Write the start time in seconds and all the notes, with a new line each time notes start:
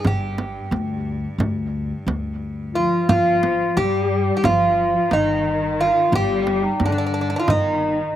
Already playing: G2
0.05 G1 G4, frame drum
0.38 frame drum
0.71 D2, frame drum
1.38 D2, frame drum
2.07 D2, frame drum
2.74 F3 F4
3.09 G1 F3 F4, frame drum
3.43 frame drum
3.77 G2 G3 G4, frame drum
4.37 G4
4.44 G1 F3 F4, frame drum
4.96 F4
5.09 G1 D#3 D#4, frame drum
5.13 D#4
5.63 D#4
5.80 F4
5.87 D#4
5.92 F4
6.12 G1 G3 G4, frame drum
6.47 frame drum
6.63 D#4
6.80 G2 D3 D4, frame drum
6.86 D4
6.92 D4
6.98 D4
7.06 D4
7.14 D4
7.21 D4
7.30 D4
7.36 D4 F4
7.48 G1 D#3 D#4, frame drum
8.00 D#4
8.12 D#3